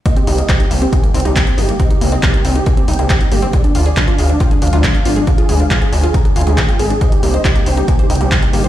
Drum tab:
HH |x-x-o-x-x-x-o-x-x-x-oxx-x-x-o-x-|x-x-o-x-x-x-o-x-x-x-oxx-x-x-o-x-|x-x-o-x-x-x-o-x-x-x-oxx-x-x-o-x-|x-x-o-x-x-x-o-x-x-x-oxx-x-x-o-x-|
CP |--------x---------------x-------|--------x---------------x-------|--------x---------------x-------|--------x---------------x-------|
BD |o-------o-------o-------o-------|o-------o-------o-------o-------|o-------o-------o-------o-------|o-------o-------o-------o-------|

HH |x-x-o-x-x-x-o-x-x-x-oxx-x-x-o-x-|
CP |--------x---------------x-------|
BD |o-------o-------o-------o-------|